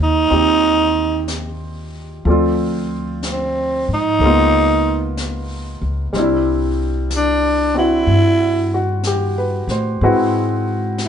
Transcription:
0.00 0.28 D#2 medium
0.00 2.24 G3 soft
0.00 2.25 A#3 soft
0.00 0.28 C4 soft
0.00 0.29 D#4 soft
0.00 1.27 D#4 medium
0.00 0.30 F4 medium
0.30 2.22 D#2 medium
0.30 2.26 C4 soft
0.30 2.26 D#4 soft
0.30 2.27 F4 soft
0.30 2.27 G4 soft
0.30 brush sweep soft
1.28 brush sweep soft
1.28 snare soft
1.28 hi-hat pedal medium
2.25 3.84 D2 medium
2.25 4.20 F3 soft
2.25 4.22 C4 soft
2.25 4.21 A4 soft
2.25 4.22 D5 soft
2.25 brush sweep soft
2.30 4.23 F4 medium
3.23 brush sweep soft
3.23 snare soft
3.23 hi-hat pedal soft
3.32 3.89 C4 medium
3.88 4.19 G#2 medium
3.94 5.16 D#4 medium
4.19 5.77 C#2 medium
4.19 6.14 G#3 soft
4.19 6.14 A#3 soft
4.19 6.15 B3 soft
4.19 brush sweep soft
4.24 6.16 D#4 soft
4.24 6.17 F4 medium
5.17 brush sweep soft
5.17 snare soft
5.17 hi-hat pedal medium
5.82 6.12 C#2 medium
6.13 8.03 C2 medium
6.13 10.00 G3 soft
6.13 7.73 C4 soft
6.13 brush sweep soft
6.13 snare soft
6.17 7.74 D4 soft
6.17 7.75 E4 soft
7.10 brush sweep soft
7.10 snare soft
7.10 hi-hat pedal medium
7.17 7.74 D4 medium
7.74 10.01 C4 soft
7.74 10.01 D4 soft
7.74 10.02 E4 soft
7.74 9.02 E4 medium
7.74 8.73 F#4 soft
8.07 9.64 G2 medium
8.07 brush sweep soft
8.74 9.23 F#4 soft
9.04 9.66 G4 soft
9.04 brush sweep soft
9.04 snare soft
9.04 hi-hat pedal medium
9.38 9.87 B4 soft
9.67 9.98 A2 medium
9.67 10.20 C5 soft
9.67 snare soft
10.00 11.08 G#2 medium
10.00 11.08 G#3 medium
10.00 11.08 C4 soft
10.00 11.08 E4 soft
10.00 11.08 F#4 medium
10.00 11.08 B4 soft
10.00 brush sweep soft
10.98 brush sweep soft
10.98 snare soft
10.98 hi-hat pedal soft

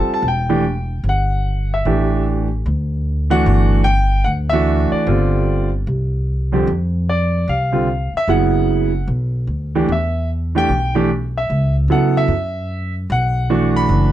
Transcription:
0.00 0.21 G3 medium
0.00 0.21 C4 medium
0.00 0.21 F4 medium
0.00 0.21 A4 medium
0.00 0.12 A5 medium
0.07 muted upright bass stroke soft
0.14 0.27 A5 medium
0.22 1.00 E1 medium
0.28 1.03 G5 medium
0.49 0.63 E3 medium
0.49 0.63 A3 medium
0.49 0.63 D4 medium
0.49 0.63 G4 medium
1.04 1.81 G1 medium
1.09 1.75 F#5 medium
1.74 2.23 E5 medium
1.85 2.62 A1 medium
1.85 2.46 E3 medium
1.85 2.47 A3 medium
1.85 2.47 D4 medium
1.85 2.47 G4 medium
2.66 3.42 D2 medium
3.30 3.83 E3 medium
3.30 3.83 A3 medium
3.30 3.84 D4 medium
3.30 3.84 F#4 medium
3.30 3.88 F#5 loud
3.46 4.23 G1 medium
3.84 4.23 G5 loud
4.24 4.88 D2 medium
4.24 4.30 F#5 medium
4.50 5.04 E3 medium
4.50 5.05 A3 medium
4.50 5.05 D4 medium
4.50 5.05 F#4 medium
4.50 4.88 E5 medium
4.92 5.69 D5 medium
4.92 muted upright bass stroke soft
5.06 5.83 G1 medium
5.06 5.68 D3 medium
5.06 5.68 G3 medium
5.06 5.68 C4 medium
5.06 5.68 F4 medium
5.87 6.64 C2 medium
6.52 6.66 F2 medium
6.52 6.66 D3 medium
6.52 6.66 G3 medium
6.52 6.66 C4 medium
6.52 6.67 G4 medium
6.67 7.44 F2 medium
7.09 7.50 D5 medium
7.48 8.10 C2 medium
7.48 8.11 F5 medium
7.72 7.86 D3 medium
7.72 7.86 G3 medium
7.72 7.86 C4 medium
7.72 7.87 F4 medium
8.14 8.29 E5 medium
8.14 muted upright bass stroke soft
8.28 9.05 F#1 medium
8.28 8.89 C#3 medium
8.28 8.90 F#3 medium
8.28 8.89 B3 medium
8.28 8.90 E4 medium
8.28 9.06 F#5 medium
9.08 9.46 B1 medium
9.47 9.86 D2 medium
9.75 9.88 E3 medium
9.75 9.88 A3 medium
9.75 9.89 D4 medium
9.75 9.88 G4 medium
9.89 10.65 E2 medium
9.89 10.28 E5 medium
10.55 10.68 E3 medium
10.55 10.68 A3 medium
10.55 10.69 D4 medium
10.55 10.69 G4 medium
10.55 11.07 G5 loud
10.69 11.46 B1 medium
10.95 11.08 E3 medium
10.95 11.08 A3 medium
10.95 11.09 D4 medium
10.95 11.09 G4 medium
11.38 11.74 E5 medium
11.50 11.87 C#2 medium
11.88 12.26 C#3 medium
11.88 12.30 F#3 medium
11.88 12.30 B3 medium
11.88 12.30 E4 medium
11.88 12.31 A4 medium
11.88 12.17 F#5 medium
12.17 12.93 E5 medium
12.28 13.05 F#2 medium
13.10 13.86 B1 medium
13.10 13.79 F#5 medium
13.50 14.11 E3 medium
13.50 14.11 A3 medium
13.50 14.11 D4 medium
13.50 14.11 F#4 medium
13.76 14.12 B5 loud
13.89 14.12 F#1 medium

